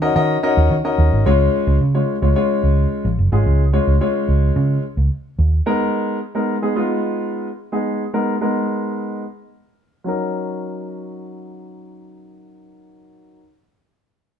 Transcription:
0.02 0.12 C#4 medium
0.02 0.12 D#4 medium
0.02 0.12 F#4 medium
0.02 0.12 A#4 medium
0.02 0.12 D#5 loud
0.15 0.37 D#3 loud
0.15 0.36 C#4 medium
0.15 0.36 D#4 medium
0.15 0.36 F#4 medium
0.15 0.36 A#4 medium
0.15 0.36 D#5 loud
0.43 0.73 C#4 loud
0.43 0.73 D#4 medium
0.43 0.73 F#4 medium
0.43 0.73 A#4 medium
0.43 0.73 D#5 loud
0.57 0.68 D#2 medium
0.71 0.81 D#3 loud
0.84 1.24 C#4 medium
0.84 1.26 D#4 medium
0.84 1.26 F#4 medium
0.84 1.26 A#4 medium
0.84 1.26 D#5 medium
0.98 1.09 D#2 loud
1.12 1.23 G#1 loud
1.26 1.47 C#2 loud
1.26 1.76 G#3 medium
1.26 1.76 C#4 medium
1.26 1.76 F4 medium
1.26 1.76 C#5 loud
1.67 1.78 C#2 loud
1.81 2.02 C#3 medium
1.94 2.15 G#3 medium
1.94 2.15 C#4 medium
1.94 2.15 F4 medium
1.94 2.15 C#5 medium
2.22 2.33 C#2 medium
2.22 2.32 G#3 medium
2.22 2.32 C#4 medium
2.22 2.32 F4 medium
2.22 2.32 C#5 medium
2.35 3.06 G#3 medium
2.35 3.06 C#4 medium
2.35 3.06 F4 medium
2.35 3.06 C#5 loud
2.63 2.85 C#2 medium
3.05 3.15 A#1 medium
3.19 3.29 F#1 medium
3.32 3.43 G#1 medium
3.32 3.62 G#3 medium
3.32 3.62 C#4 medium
3.32 3.62 F4 medium
3.32 3.62 G#4 medium
3.46 3.78 C#2 loud
3.73 3.93 G#3 medium
3.73 3.93 C#4 medium
3.73 3.93 F4 medium
3.73 3.94 C#5 medium
3.87 3.98 C#2 medium
4.01 4.81 G#3 medium
4.01 4.81 C#4 medium
4.01 4.81 F4 medium
4.01 4.81 C#5 loud
4.29 4.50 C#2 loud
4.56 4.77 C#3 loud
4.97 5.08 C#2 medium
5.39 5.60 D#2 medium
5.66 6.16 G#3 medium
5.66 6.16 B3 medium
5.66 6.16 D#4 medium
5.66 6.17 A#4 loud
6.35 6.55 G#3 medium
6.35 6.55 B3 medium
6.35 6.55 D#4 medium
6.35 6.55 A#4 medium
6.62 6.72 G#3 medium
6.62 6.72 B3 medium
6.62 6.72 D#4 medium
6.62 6.73 G#4 medium
6.76 7.46 G#3 medium
6.76 7.46 B3 medium
6.76 7.46 D#4 medium
6.76 7.47 F4 loud
7.72 8.02 G#3 medium
7.72 8.02 B3 medium
7.72 8.03 D#4 medium
7.72 8.03 G#4 medium
8.13 8.34 G#3 medium
8.13 8.34 B3 medium
8.13 8.34 D#4 medium
8.13 8.34 A#4 medium
8.41 9.22 G#3 medium
8.41 9.22 B3 medium
8.41 9.22 D#4 medium
8.41 9.22 A#4 medium
10.04 13.38 F#3 medium
10.04 13.39 C#4 medium
10.04 13.40 D#4 medium
10.08 13.42 A#4 medium

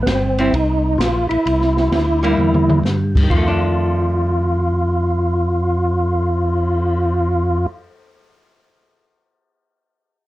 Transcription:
0.02 0.51 G1 medium
0.02 0.06 B3 medium
0.02 kick soft
0.07 0.54 C4 medium
0.07 snare medium
0.07 hi-hat pedal medium
0.07 ride medium
0.38 0.51 G3 medium
0.38 0.52 C4 medium
0.38 0.52 E4 medium
0.38 ride soft
0.53 0.97 C2 medium
0.53 1.01 D#4 medium
0.53 kick soft
0.53 ride medium
0.98 1.27 A#1 medium
0.98 1.27 F4 loud
0.98 kick soft
0.98 snare medium
0.98 hi-hat pedal soft
0.98 ride medium
1.29 1.37 A#1 soft
1.29 2.79 E4 loud
1.29 ride soft
1.45 1.90 C2 medium
1.45 kick soft
1.45 ride medium
1.61 snare soft
1.77 snare soft
1.92 2.36 D2 medium
1.92 kick soft
1.92 snare medium
1.92 hi-hat pedal medium
1.92 ride medium
2.23 2.81 G3 medium
2.23 2.81 A#3 medium
2.23 2.82 E4 medium
2.23 ride soft
2.38 2.82 E2 medium
2.38 mid tom soft
2.54 mid tom medium
2.70 mid tom medium
2.84 3.28 G2 medium
2.84 snare soft
2.84 hi-hat pedal medium
3.15 kick medium
3.15 crash medium
3.23 7.63 D#3 medium
3.30 7.66 F2 medium
3.30 7.66 F4 medium
3.30 kick medium
3.30 crash medium
3.37 7.77 A3 medium
3.48 7.88 D4 medium
3.63 cymbal swell soft

